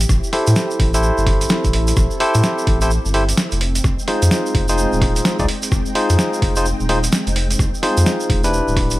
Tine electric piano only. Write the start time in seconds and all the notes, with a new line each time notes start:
0.33 E4 G4 A4 C5
0.94 E4 G4 A4 C5
2.20 E4 G4 A4 C5
2.82 E4 G4 A4 C5
3.14 E4 G4 A4 C5
4.08 D#4 F4 G#4 C5
4.69 D#4 F4 G#4 C5
5.40 D#4 F4 G#4 D5
5.95 D#4 F4 G#4 C5
6.57 D#4 F4 G#4 C5
6.89 D#4 F4 G#4 C5
7.83 D#4 F4 G#4 C5
8.44 D4 E4 G4 B4